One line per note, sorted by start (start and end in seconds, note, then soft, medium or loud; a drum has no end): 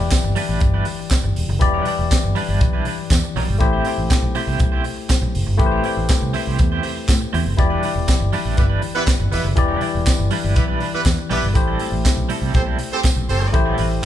0.00 1.56 E3 medium
0.00 1.57 E4 medium
0.00 1.57 G4 medium
0.00 1.58 D5 medium
0.00 muted clean electric guitar stroke soft
0.11 muted clean electric guitar stroke soft
0.11 kick loud
0.11 snare loud
0.11 clap medium
0.11 closed hi-hat medium
0.11 tambourine medium
0.24 0.34 G1 medium
0.24 muted clean electric guitar stroke medium
0.36 0.50 G3 medium
0.36 0.49 D4 medium
0.36 0.48 E4 medium
0.36 0.47 B4 loud
0.36 open hi-hat medium
0.49 0.59 A1 medium
0.49 0.60 G3 soft
0.49 0.61 D4 medium
0.49 0.61 E4 soft
0.49 0.61 B4 medium
0.60 0.81 G1 medium
0.60 muted clean electric guitar stroke soft
0.60 kick loud
0.60 closed hi-hat medium
0.74 0.85 G3 medium
0.74 0.85 D4 medium
0.74 0.86 E4 medium
0.74 0.87 B4 medium
0.85 muted clean electric guitar stroke soft
0.85 open hi-hat medium
0.99 muted clean electric guitar stroke soft
1.11 muted clean electric guitar stroke soft
1.11 kick medium
1.11 snare loud
1.11 clap medium
1.11 closed hi-hat medium
1.11 tambourine medium
1.24 1.34 G1 medium
1.24 muted clean electric guitar stroke soft
1.36 1.46 E1 medium
1.36 open hi-hat medium
1.49 1.59 F#1 loud
1.49 muted clean electric guitar stroke soft
1.59 1.81 E1 loud
1.59 3.55 E3 medium
1.59 3.56 E4 medium
1.59 3.56 G4 medium
1.59 3.57 D5 medium
1.59 muted clean electric guitar stroke soft
1.59 kick loud
1.59 closed hi-hat medium
1.74 1.85 G3 medium
1.74 1.85 D4 medium
1.74 1.86 E4 medium
1.74 1.87 B4 medium
1.85 2.01 G3 medium
1.85 1.99 D4 medium
1.85 1.98 E4 medium
1.85 1.98 D5 medium
1.85 open hi-hat medium
1.99 2.09 E1 medium
1.99 muted clean electric guitar stroke soft
2.11 muted clean electric guitar stroke soft
2.11 kick loud
2.11 snare loud
2.11 clap medium
2.11 closed hi-hat medium
2.11 tambourine medium
2.24 2.33 G1 medium
2.24 muted clean electric guitar stroke soft
2.35 2.49 G3 medium
2.35 2.49 D4 medium
2.35 2.48 E4 medium
2.35 2.47 B4 loud
2.35 open hi-hat medium
2.48 2.58 G1 medium
2.48 2.60 G3 soft
2.48 2.61 D4 medium
2.48 2.61 E4 medium
2.48 2.62 B4 medium
2.61 2.81 B1 medium
2.61 muted clean electric guitar stroke soft
2.61 kick loud
2.61 closed hi-hat medium
2.73 2.85 G3 medium
2.73 2.86 D4 medium
2.73 2.87 E4 medium
2.73 2.87 B4 medium
2.85 3.01 G3 medium
2.85 3.00 D4 medium
2.85 2.99 E4 medium
2.85 2.98 B4 medium
2.85 open hi-hat medium
2.99 muted clean electric guitar stroke soft
3.10 3.20 E2 loud
3.10 kick loud
3.10 snare loud
3.10 clap medium
3.10 closed hi-hat medium
3.10 tambourine loud
3.24 muted clean electric guitar stroke medium
3.36 3.45 B1 medium
3.36 3.56 G3 medium
3.36 3.49 D4 medium
3.36 3.48 E4 medium
3.36 3.47 B4 loud
3.36 open hi-hat medium
3.48 3.58 G1 medium
3.48 muted clean electric guitar stroke soft
3.58 3.80 A1 loud
3.58 5.54 A3 medium
3.58 5.55 E4 medium
3.58 5.55 G4 medium
3.58 5.56 C5 medium
3.58 muted clean electric guitar stroke soft
3.58 kick medium
3.58 closed hi-hat medium
3.73 3.85 C4 medium
3.73 3.85 E4 medium
3.73 3.86 G4 medium
3.73 3.87 C5 medium
3.85 4.00 C4 medium
3.85 3.98 E4 medium
3.85 3.98 G4 medium
3.85 3.97 C5 medium
3.85 open hi-hat medium
3.98 4.08 A1 medium
3.98 muted clean electric guitar stroke soft
4.10 muted clean electric guitar stroke soft
4.10 kick loud
4.10 snare loud
4.10 clap medium
4.10 closed hi-hat medium
4.10 tambourine medium
4.22 4.32 B1 medium
4.22 muted clean electric guitar stroke soft
4.35 4.48 C4 medium
4.35 4.48 E4 medium
4.35 4.47 G4 loud
4.35 4.46 C5 loud
4.35 open hi-hat medium
4.47 4.57 C2 medium
4.47 4.59 C4 soft
4.47 4.59 E4 medium
4.47 4.60 G4 medium
4.47 4.60 C5 medium
4.60 4.80 B1 medium
4.60 muted clean electric guitar stroke soft
4.60 kick loud
4.60 closed hi-hat medium
4.72 4.83 C4 medium
4.72 4.84 E4 medium
4.72 4.84 G4 medium
4.72 4.85 C5 medium
4.84 muted clean electric guitar stroke soft
4.84 open hi-hat medium
4.96 muted clean electric guitar stroke soft
5.09 muted clean electric guitar stroke soft
5.09 kick medium
5.09 snare loud
5.09 clap medium
5.09 closed hi-hat medium
5.09 tambourine medium
5.22 5.32 B1 medium
5.22 muted clean electric guitar stroke medium
5.35 5.44 F#1 medium
5.35 open hi-hat medium
5.47 5.57 G1 medium
5.47 muted clean electric guitar stroke soft
5.57 5.79 A1 loud
5.57 7.53 A3 medium
5.57 7.54 E4 medium
5.57 7.54 G4 medium
5.57 5.66 B4 medium
5.57 muted clean electric guitar stroke soft
5.57 kick loud
5.57 closed hi-hat medium
5.66 7.58 C5 medium
5.71 5.82 C4 medium
5.71 5.84 E4 medium
5.71 5.84 G4 medium
5.71 5.85 C5 medium
5.84 5.99 C4 medium
5.84 5.97 E4 medium
5.84 5.96 G4 medium
5.84 5.96 D5 medium
5.84 open hi-hat medium
5.97 6.07 A1 loud
5.97 muted clean electric guitar stroke soft
6.09 muted clean electric guitar stroke soft
6.09 kick loud
6.09 snare loud
6.09 clap medium
6.09 closed hi-hat medium
6.09 tambourine medium
6.21 6.32 C2 medium
6.21 muted clean electric guitar stroke soft
6.34 6.47 C4 medium
6.34 6.46 E4 medium
6.34 6.46 G4 medium
6.34 6.45 C5 medium
6.34 open hi-hat medium
6.46 6.57 C2 medium
6.46 6.58 C4 soft
6.46 6.59 E4 medium
6.46 6.59 G4 medium
6.46 6.59 C5 medium
6.59 6.79 E2 medium
6.59 muted clean electric guitar stroke soft
6.59 kick loud
6.59 closed hi-hat medium
6.72 6.82 C4 medium
6.72 6.83 E4 medium
6.72 6.84 G4 medium
6.72 6.84 C5 medium
6.83 6.98 C4 medium
6.83 6.96 E4 medium
6.83 6.96 G4 medium
6.83 6.95 C5 medium
6.83 open hi-hat medium
6.96 muted clean electric guitar stroke soft
7.08 7.18 A2 loud
7.08 kick loud
7.08 snare loud
7.08 clap medium
7.08 closed hi-hat medium
7.08 tambourine medium
7.21 muted clean electric guitar stroke soft
7.33 7.44 E2 loud
7.33 7.52 C4 medium
7.33 7.46 E4 medium
7.33 7.46 G4 medium
7.33 7.45 C5 medium
7.33 open hi-hat medium
7.46 7.56 F#1 medium
7.46 muted clean electric guitar stroke soft
7.56 7.78 E1 loud
7.56 9.52 E3 medium
7.56 9.52 E4 medium
7.56 9.53 G4 medium
7.56 9.53 D5 medium
7.56 muted clean electric guitar stroke soft
7.56 kick loud
7.56 closed hi-hat medium
7.70 7.82 G3 medium
7.70 7.83 D4 medium
7.70 7.83 E4 medium
7.70 7.84 B4 medium
7.83 7.98 G3 medium
7.83 7.96 D4 medium
7.83 7.95 E4 medium
7.83 7.95 B4 medium
7.83 open hi-hat medium
7.95 8.05 E1 loud
7.95 muted clean electric guitar stroke soft
8.08 muted clean electric guitar stroke soft
8.08 kick loud
8.08 snare loud
8.08 clap medium
8.08 closed hi-hat medium
8.08 tambourine medium
8.20 8.30 G1 medium
8.20 muted clean electric guitar stroke medium
8.33 8.46 G3 medium
8.33 8.45 D4 medium
8.33 8.44 E4 medium
8.33 8.44 B4 medium
8.33 open hi-hat medium
8.45 8.55 A1 medium
8.45 8.56 G3 soft
8.45 8.56 D4 medium
8.45 8.57 E4 medium
8.45 8.58 B4 medium
8.57 8.78 G1 loud
8.57 8.65 B3 medium
8.57 8.65 E4 medium
8.57 8.65 G4 medium
8.57 8.65 B4 medium
8.57 muted clean electric guitar stroke soft
8.57 kick loud
8.57 closed hi-hat medium
8.70 8.81 G3 medium
8.70 8.82 D4 medium
8.70 8.82 E4 medium
8.70 8.82 B4 medium
8.82 muted clean electric guitar stroke soft
8.82 open hi-hat medium
8.95 9.03 B3 loud
8.95 9.03 E4 loud
8.95 9.03 G4 medium
8.95 9.03 B4 loud
8.95 muted clean electric guitar stroke soft
9.07 muted clean electric guitar stroke soft
9.07 kick loud
9.07 snare loud
9.07 clap medium
9.07 closed hi-hat medium
9.07 tambourine medium
9.20 9.30 G1 medium
9.20 muted clean electric guitar stroke medium
9.32 9.42 E1 medium
9.32 9.48 B3 medium
9.32 9.48 E4 medium
9.32 9.48 G4 medium
9.32 9.48 B4 loud
9.32 open hi-hat medium
9.45 9.54 F#1 loud
9.45 muted clean electric guitar stroke soft
9.56 9.77 E1 loud
9.56 11.51 E3 medium
9.56 11.51 E4 medium
9.56 11.52 G4 medium
9.56 11.52 D5 medium
9.56 muted clean electric guitar stroke soft
9.56 kick loud
9.56 closed hi-hat medium
9.68 9.80 G3 medium
9.68 9.80 D4 medium
9.68 9.81 E4 medium
9.68 9.82 B4 medium
9.81 9.96 G3 medium
9.81 9.94 D4 medium
9.81 9.93 E4 medium
9.81 9.94 D5 medium
9.81 open hi-hat medium
9.94 10.04 E1 medium
9.94 muted clean electric guitar stroke medium
10.06 muted clean electric guitar stroke soft
10.06 kick loud
10.06 snare loud
10.06 clap medium
10.06 closed hi-hat medium
10.06 tambourine medium
10.19 10.29 G1 medium
10.19 muted clean electric guitar stroke soft
10.31 10.44 G3 medium
10.31 10.44 D4 medium
10.31 10.43 E4 loud
10.31 10.42 B4 loud
10.31 open hi-hat medium
10.43 10.54 G1 medium
10.43 10.55 G3 medium
10.43 10.55 D4 medium
10.43 10.55 E4 medium
10.43 10.56 B4 medium
10.56 10.76 B1 medium
10.56 10.64 B3 medium
10.56 10.64 E4 medium
10.56 10.64 G4 medium
10.56 10.64 B4 medium
10.56 muted clean electric guitar stroke soft
10.56 kick loud
10.56 closed hi-hat medium
10.68 10.80 G3 medium
10.68 10.80 D4 medium
10.68 10.81 E4 medium
10.68 10.82 B4 loud
10.80 10.96 G3 medium
10.80 10.93 D4 medium
10.80 10.93 E4 medium
10.80 10.92 B4 medium
10.80 open hi-hat medium
10.93 11.01 B3 medium
10.93 11.01 E4 medium
10.93 11.01 G4 medium
10.93 11.01 B4 loud
10.93 muted clean electric guitar stroke soft
11.06 11.16 E2 loud
11.06 kick medium
11.06 snare loud
11.06 clap medium
11.06 closed hi-hat medium
11.06 tambourine medium
11.18 muted clean electric guitar stroke medium
11.30 11.40 B1 medium
11.30 11.49 G3 medium
11.30 11.47 B3 medium
11.30 11.43 D4 medium
11.30 11.47 E4 medium
11.30 11.43 E4 medium
11.30 11.47 G4 loud
11.30 11.47 B4 loud
11.30 11.42 B4 medium
11.30 open hi-hat medium
11.43 11.53 G1 medium
11.43 muted clean electric guitar stroke medium
11.53 11.75 A1 loud
11.53 13.49 A3 medium
11.53 13.49 E4 medium
11.53 13.50 G4 medium
11.53 13.50 C5 medium
11.53 muted clean electric guitar stroke soft
11.53 kick loud
11.53 closed hi-hat medium
11.67 11.79 G3 medium
11.67 11.80 C4 medium
11.67 11.80 E4 medium
11.67 11.81 A4 medium
11.79 11.95 G3 medium
11.79 11.92 C4 medium
11.79 11.91 E4 medium
11.79 11.90 A4 medium
11.79 open hi-hat medium
11.91 12.02 A1 loud
11.91 muted clean electric guitar stroke soft
12.04 muted clean electric guitar stroke soft
12.04 kick loud
12.04 snare loud
12.04 clap medium
12.04 closed hi-hat medium
12.04 tambourine medium
12.16 12.27 B1 medium
12.16 muted clean electric guitar stroke soft
12.29 12.41 G3 medium
12.29 12.41 C4 medium
12.29 12.40 E4 medium
12.29 12.39 A4 medium
12.29 open hi-hat medium
12.40 12.52 C2 medium
12.40 12.53 G3 medium
12.40 12.53 C4 medium
12.40 12.54 E4 medium
12.40 12.54 A4 medium
12.54 12.74 B1 loud
12.54 12.63 C4 medium
12.54 12.63 G4 medium
12.54 12.63 A4 medium
12.54 12.63 C5 medium
12.54 muted clean electric guitar stroke soft
12.54 kick loud
12.54 closed hi-hat medium
12.66 12.78 G3 medium
12.66 12.78 C4 medium
12.66 12.78 E4 medium
12.66 12.79 A4 medium
12.79 muted clean electric guitar stroke soft
12.79 open hi-hat medium
12.91 13.00 C4 loud
12.91 13.00 G4 loud
12.91 13.00 A4 medium
12.91 13.00 C5 loud
12.91 muted clean electric guitar stroke soft
13.03 muted clean electric guitar stroke soft
13.03 kick loud
13.03 snare loud
13.03 clap medium
13.03 closed hi-hat medium
13.03 tambourine medium
13.16 13.26 B1 medium
13.16 muted clean electric guitar stroke soft
13.29 13.41 F#1 medium
13.29 13.50 C4 loud
13.29 13.50 G4 medium
13.29 13.50 A4 medium
13.29 13.50 C5 loud
13.29 open hi-hat medium
13.41 13.51 G1 medium
13.41 muted clean electric guitar stroke soft
13.52 13.74 A1 loud
13.52 14.05 A3 medium
13.52 14.05 E4 medium
13.52 14.05 G4 medium
13.52 14.05 C5 medium
13.52 muted clean electric guitar stroke soft
13.52 kick loud
13.52 closed hi-hat medium
13.66 13.77 G3 medium
13.66 13.78 C4 medium
13.66 13.78 E4 medium
13.66 13.79 A4 medium
13.78 13.98 A1 loud
13.78 13.93 G3 medium
13.78 13.90 C4 medium
13.78 13.90 E4 medium
13.78 13.90 B4 medium
13.78 open hi-hat medium
13.90 muted clean electric guitar stroke soft